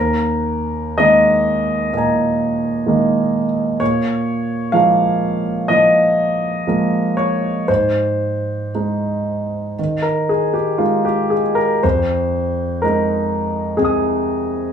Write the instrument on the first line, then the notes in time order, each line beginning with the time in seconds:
grand piano
Already playing: D#2 A#4
0.98 D#3 G#3 A#3 D#5
1.93 A#2 D#5
1.97 G#5 A#5
2.86 D#3 G#3 A#3
3.80 A#2 C#5
4.72 F3 G#3 A#3 F5
5.68 F3 D#5
6.67 F3 G#3 A#3
7.17 C#5
7.68 G#2 C5
8.75 G#3 D#4
9.79 D#3
10.02 A#4
10.29 G#4
10.54 G4
10.78 G#3 D#4 F4
11.05 G4
11.30 G#4
11.55 A#4
11.83 F2 C5
12.82 G#3 D#4 A#4
13.77 C3 G#4 G#5
13.82 G#5 D#6